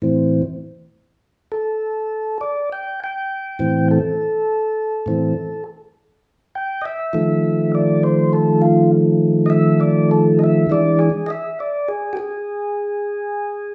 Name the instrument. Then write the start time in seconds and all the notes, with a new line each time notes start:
tonewheel organ
0.02 A2 E3 C4
1.52 A4
2.41 D5
2.72 G5
3.04 G5
3.59 A2 E3 C4
3.91 A4
5.06 A2 E3 C4
6.55 G5
6.81 D#5
6.86 E5
7.13 D#3 F3 A3
7.75 D5
8.03 C5
8.33 A4
8.62 F4
9.46 D#5 E5
9.81 D5
10.11 A4
10.39 D#5
10.44 E5
10.70 E3 G#3 D4 D5
10.99 G#4
11.26 D#5 E5
11.60 D5
11.88 G#4
12.13 G4 G#4